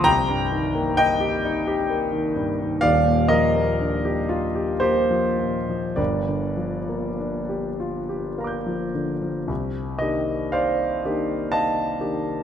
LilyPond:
<<
  \new Staff \with { instrumentName = "Grand piano" } { \time 3/4 \key c \minor \tempo 4 = 59 << { r2. | r2. | r2 <f'' bes'' d''' g'''>4 | r2. | } \\ { <g'' bes''>4 <ees'' g''>4. r8 | <d'' f''>8 <bes' ees''>4. <g' c''>4 | <bes' d''>2~ <bes' d''>8 r8 | r8 ees''8 <c'' d'' f''>4 <ees'' f'' a''>4 | } >> }
  \new Staff \with { instrumentName = "Grand piano" } { \time 3/4 \key c \minor c,16 g,16 ees16 bes16 ees'16 g'16 ees'16 g'16 bes16 ees16 g,16 ees16 | <ees,, ees,>16 bes,16 f16 bes16 d'16 g'16 f'16 g'16 bes16 f16 bes,16 f16 | <g,, g,>16 d16 f16 bes16 d'16 g'16 f'16 g'16 bes16 f16 d16 f16 | c,8 <ees bes d' g'>4 <ees bes d' g'>4 <ees bes d' g'>8 | }
>>